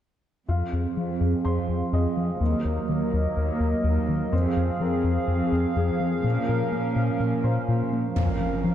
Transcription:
0.48 cello section F2, analog synth bass F2, analog synth pad F3 C4 G#4 F5, felt piano F4 F5
0.73 analog synth bass F2
0.96 cello section F2, analog synth bass F3
1.21 analog synth bass F2
1.44 cello section F2, analog synth bass F2, felt piano C5 C6
1.69 analog synth bass F2
1.92 cello section F2, analog synth bass F2, felt piano D#5
2.17 analog synth bass F3
2.40 cello section D#2, analog synth bass D#2, analog synth pad F#3 A#3 A#4 D#5
2.65 analog synth bass D#2
2.88 cello section D#2, analog synth bass D#3
3.13 analog synth bass D#2
3.36 cello section D#2, analog synth bass D#2
3.60 analog synth bass D#2
3.84 analog synth bass D#2, cello section D#2
4.09 analog synth bass D#3
4.32 cello section F2, analog synth bass F2, analog synth pad F3 C4 G#4 F5, felt piano C4 C5
4.57 analog synth bass F2
4.81 cello section F2, analog synth bass F3, felt piano A#4
5.04 analog synth bass F2
5.28 analog synth bass F2, cello section F2
5.52 analog synth bass F2
5.76 cello section F2, analog synth bass F2, felt piano G#4
6.00 analog synth bass F3
6.24 analog synth bass A#2, cello section A#2, analog synth pad C#4 A#4
6.48 analog synth bass A#2, felt piano A#4
6.72 cello section A#2, analog synth bass A#3
6.96 analog synth bass A#2
7.20 cello section A#2, analog synth bass A#2
7.44 analog synth bass A#2, felt piano C5
7.67 cello section A#2, analog synth bass A#2
7.93 analog synth bass A#3
8.16 cello section F2, analog synth bass F2, analog synth pad F3 C#4 A#4 F5, impact
8.40 analog synth bass F3
8.64 analog synth bass F3

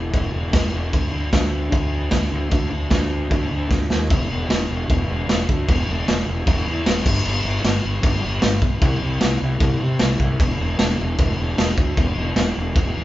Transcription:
Already playing: fingered electric bass E1
0.13 fingered electric bass E1, kick, crash
0.34 fingered electric bass E1
0.53 fingered electric bass E1, kick, snare, crash
0.74 fingered electric bass E1
0.93 fingered electric bass D2, kick, crash
1.13 fingered electric bass D2
1.33 fingered electric bass D2, kick, snare, crash
1.72 fingered electric bass D2, kick, crash
2.11 fingered electric bass D2, kick, snare, crash
2.33 fingered electric bass D2
2.51 fingered electric bass D2, kick, crash
2.73 fingered electric bass D2
2.90 fingered electric bass D2, kick, snare, crash
3.31 fingered electric bass D2, kick, crash
3.51 fingered electric bass D2
3.71 fingered electric bass D2, kick, snare
3.90 fingered electric bass D#2, snare
4.10 fingered electric bass E1, kick, crash
4.31 fingered electric bass E1
4.50 fingered electric bass E1, snare, crash
4.70 fingered electric bass E1
4.90 fingered electric bass E1, kick, crash
5.10 fingered electric bass E1
5.29 fingered electric bass E1, snare, crash
5.49 fingered electric bass D2, kick
5.68 fingered electric bass E1, kick, crash
5.88 fingered electric bass E1
6.08 fingered electric bass E1, snare, crash
6.28 fingered electric bass E1
6.47 fingered electric bass E1, kick, crash
6.67 fingered electric bass E2
6.86 fingered electric bass E1, snare, crash
7.06 fingered electric bass G1, kick, crash
7.25 fingered electric bass G1, crash
7.45 fingered electric bass G1
7.64 fingered electric bass G1, snare, crash
7.85 fingered electric bass G1
8.03 fingered electric bass G1, kick, crash
8.24 fingered electric bass G1
8.42 fingered electric bass G1, snare, crash
8.62 fingered electric bass B1, kick
8.81 fingered electric bass C2, kick, crash
9.02 fingered electric bass C2
9.21 fingered electric bass C2, snare, crash
9.42 fingered electric bass C2
9.60 fingered electric bass C2, kick, crash
9.82 fingered electric bass C3
9.99 fingered electric bass C2, snare, crash
10.20 fingered electric bass C2, kick
10.40 fingered electric bass E1, kick, crash
10.61 fingered electric bass E1
10.79 fingered electric bass E1, snare, crash
11.01 fingered electric bass E1
11.19 fingered electric bass E1, kick, crash
11.40 fingered electric bass E1
11.58 fingered electric bass E1, snare, crash
11.78 fingered electric bass D2, kick
11.97 fingered electric bass E1, kick, crash
12.18 fingered electric bass E1
12.36 fingered electric bass E1, snare, crash
12.58 fingered electric bass E1
12.76 fingered electric bass E1, kick, crash
12.97 fingered electric bass E2

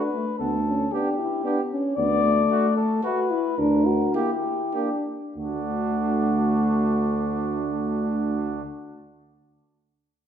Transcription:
Already playing: french horn D4, cornet B4
0.13 french horn A3
0.39 tuba D2, french horn B3, cornet A4
0.66 french horn C#4
0.92 trombone B3, french horn D4, cornet G4, trumpet G4
1.19 french horn E4
1.44 trombone B3, french horn D4, trumpet G4
1.71 french horn C#4
1.96 tuba D2, french horn B3, cornet D5
2.24 french horn A3
2.50 trombone A3, trumpet F#4
2.77 cornet A4
3.04 trombone A3, trumpet F#4, french horn F#4, cornet B4
3.31 french horn E4
3.58 tuba D2, french horn D4, cornet A#4
3.86 french horn F#4
4.14 trombone A#3, french horn E4, cornet G4, trumpet G4
4.74 trombone A#3, french horn D4, trumpet G4
5.36 tuba D2, trombone D3, french horn A3, trumpet D4, cornet F#4

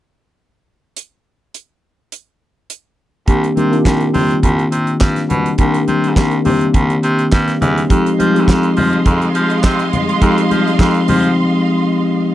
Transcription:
0.97 closed hi-hat
1.54 closed hi-hat
2.12 closed hi-hat
2.70 closed hi-hat
3.27 baritone saxophone C2, tine electric piano D#3 A#3 C4 D4 G4, kick, closed hi-hat
3.44 closed hi-hat, muted conga
3.56 baritone saxophone C3, tine electric piano D#3 A#3 C4 D4 G4, closed hi-hat, high conga
3.71 tine electric piano D#3 A#3 C4 D4 F4, closed hi-hat
3.79 tine electric piano G4
3.85 baritone saxophone C2, kick, snare, clap
4.00 closed hi-hat, muted conga
4.14 baritone saxophone C3, open hi-hat, high conga, low conga
4.31 closed hi-hat
4.43 baritone saxophone C2, kick, closed hi-hat, muted conga, low conga
4.59 closed hi-hat
4.72 baritone saxophone C3, closed hi-hat
4.87 closed hi-hat
5.00 baritone saxophone G2, kick, snare, clap, muted conga
5.16 snare, closed hi-hat, muted conga
5.30 baritone saxophone B2, closed hi-hat, high conga, low conga
5.46 closed hi-hat
5.58 baritone saxophone C2, tine electric piano D#3 A#3 C4 D4 G4, kick, closed hi-hat
5.74 closed hi-hat, muted conga
5.88 baritone saxophone C3, closed hi-hat, high conga
6.04 closed hi-hat
6.16 baritone saxophone C2, tine electric piano D#3 A#3 C4 D4 G4, kick, snare, clap, muted conga
6.31 closed hi-hat
6.44 baritone saxophone C3, tine electric piano D#3 A#3 C4 D4 G4, open hi-hat, high conga, low conga
6.61 closed hi-hat
6.74 baritone saxophone C2, kick, closed hi-hat, muted conga, low conga
6.90 closed hi-hat, muted conga
7.03 baritone saxophone C3, closed hi-hat
7.19 closed hi-hat
7.32 baritone saxophone G2, kick, snare, clap
7.48 snare, closed hi-hat, muted conga
7.61 baritone saxophone E2, closed hi-hat, high conga, low conga
7.78 closed hi-hat
7.89 baritone saxophone F2, tine electric piano F3 G#3 C4 D#4 G4, string section G#3 D#5 F5 C6, kick, closed hi-hat
8.06 closed hi-hat, muted conga
8.18 tine electric piano F3 G#3 C4 D#4 G4, baritone saxophone F3, closed hi-hat, high conga
8.34 tine electric piano F3 G#3 C4 D#4 G4, closed hi-hat
8.48 baritone saxophone F2, kick, snare, clap, muted conga
8.63 closed hi-hat, muted conga
8.77 baritone saxophone F3, open hi-hat, high conga, low conga
8.93 closed hi-hat
9.06 baritone saxophone F2, kick, closed hi-hat, low conga
9.22 closed hi-hat, muted conga
9.35 baritone saxophone F3, closed hi-hat
9.50 closed hi-hat
9.63 baritone saxophone C3, kick, snare, clap, muted conga
9.79 closed hi-hat, muted conga
9.93 closed hi-hat, high conga, low conga
10.09 closed hi-hat
10.21 baritone saxophone F2, tine electric piano F3 G#3 C4 D#4 G4, kick, closed hi-hat
10.38 closed hi-hat, muted conga
10.51 baritone saxophone F3, closed hi-hat, high conga
10.68 closed hi-hat
10.79 baritone saxophone F2, tine electric piano F3 G#3 C4 D#4 G4, kick, snare, clap
10.94 closed hi-hat
11.08 tine electric piano F3 G#3 C4 D#4 G4, baritone saxophone F3, open hi-hat, high conga, low conga
11.24 closed hi-hat

